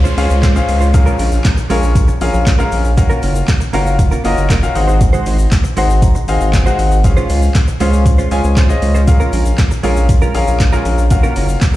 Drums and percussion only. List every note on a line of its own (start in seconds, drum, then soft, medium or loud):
0.04 shaker medium
0.18 open hi-hat medium
0.18 shaker soft
0.18 shaker medium
0.30 shaker medium
0.43 kick loud
0.43 snare medium
0.43 clap loud
0.43 closed hi-hat medium
0.43 shaker medium
0.56 shaker medium
0.68 open hi-hat medium
0.68 shaker soft
0.81 shaker medium
0.94 kick loud
0.94 closed hi-hat medium
0.94 shaker medium
1.06 shaker medium
1.19 open hi-hat medium
1.19 shaker soft
1.19 shaker medium
1.32 shaker medium
1.44 kick loud
1.44 snare loud
1.44 clap loud
1.44 closed hi-hat medium
1.44 shaker medium
1.57 shaker medium
1.70 open hi-hat medium
1.70 shaker medium
1.83 shaker medium
1.95 kick loud
1.95 closed hi-hat medium
1.95 shaker medium
2.08 shaker medium
2.21 open hi-hat medium
2.21 shaker medium
2.21 shaker soft
2.33 shaker medium
2.46 kick loud
2.46 snare loud
2.46 clap loud
2.46 closed hi-hat medium
2.46 shaker medium
2.59 shaker medium
2.72 open hi-hat medium
2.72 shaker medium
2.72 shaker soft
2.84 shaker medium
2.97 kick loud
2.97 closed hi-hat medium
2.97 shaker medium
3.10 shaker soft
3.22 open hi-hat medium
3.22 shaker soft
3.22 shaker medium
3.35 shaker medium
3.48 kick loud
3.48 snare loud
3.48 clap loud
3.48 closed hi-hat medium
3.48 shaker medium
3.61 shaker medium
3.73 open hi-hat medium
3.73 shaker medium
3.86 shaker medium
3.99 kick loud
3.99 closed hi-hat medium
3.99 shaker medium
4.11 shaker medium
4.25 open hi-hat medium
4.25 shaker medium
4.25 shaker soft
4.37 shaker medium
4.50 kick loud
4.50 snare loud
4.50 clap loud
4.50 closed hi-hat medium
4.50 shaker medium
4.63 shaker medium
4.75 open hi-hat medium
4.75 shaker soft
4.88 shaker medium
5.01 kick loud
5.01 closed hi-hat medium
5.01 shaker medium
5.13 shaker medium
5.26 open hi-hat medium
5.26 shaker medium
5.39 shaker medium
5.51 kick loud
5.51 snare loud
5.51 clap loud
5.51 closed hi-hat medium
5.51 shaker medium
5.64 shaker medium
5.77 open hi-hat medium
5.77 shaker medium
5.77 shaker soft
5.90 shaker medium
6.02 kick loud
6.02 closed hi-hat medium
6.02 shaker medium
6.15 shaker medium
6.28 open hi-hat medium
6.28 shaker medium
6.28 shaker soft
6.41 shaker medium
6.53 kick loud
6.53 snare loud
6.53 clap loud
6.53 closed hi-hat medium
6.53 shaker medium
6.66 shaker medium
6.79 open hi-hat medium
6.79 shaker medium
6.79 shaker soft
6.91 shaker medium
7.04 kick loud
7.04 closed hi-hat medium
7.04 shaker medium
7.17 shaker medium
7.29 open hi-hat medium
7.29 shaker soft
7.29 shaker medium
7.42 shaker medium
7.55 kick loud
7.55 snare loud
7.55 clap loud
7.55 closed hi-hat medium
7.55 shaker medium
7.67 shaker medium
7.80 open hi-hat medium
7.80 shaker medium
7.93 shaker medium
8.06 kick loud
8.06 closed hi-hat medium
8.06 shaker medium
8.18 shaker medium
8.31 open hi-hat medium
8.31 shaker medium
8.31 shaker soft
8.44 shaker medium
8.57 kick loud
8.57 snare medium
8.57 clap loud
8.57 closed hi-hat medium
8.57 shaker medium
8.70 shaker medium
8.82 open hi-hat medium
8.82 shaker soft
8.95 shaker medium
9.08 kick loud
9.08 closed hi-hat medium
9.08 shaker medium
9.20 shaker soft
9.20 shaker medium
9.33 open hi-hat medium
9.33 shaker soft
9.33 shaker medium
9.45 shaker medium
9.58 kick loud
9.58 snare loud
9.58 clap loud
9.58 closed hi-hat medium
9.58 shaker medium
9.71 shaker medium
9.84 open hi-hat medium
9.84 shaker medium
9.97 shaker medium
10.09 kick loud
10.09 closed hi-hat medium
10.09 shaker medium
10.21 shaker medium
10.35 open hi-hat medium
10.35 shaker medium
10.35 shaker soft
10.47 shaker medium
10.60 kick loud
10.60 snare loud
10.60 clap loud
10.60 closed hi-hat medium
10.60 shaker medium
10.73 shaker medium
10.85 open hi-hat medium
10.85 shaker soft
10.98 shaker medium
11.10 kick loud
11.10 closed hi-hat medium
11.10 shaker medium
11.23 shaker medium
11.23 shaker soft
11.36 open hi-hat medium
11.36 shaker soft
11.36 shaker medium
11.49 shaker medium
11.61 kick loud
11.61 snare loud
11.61 clap loud
11.61 closed hi-hat medium
11.61 shaker medium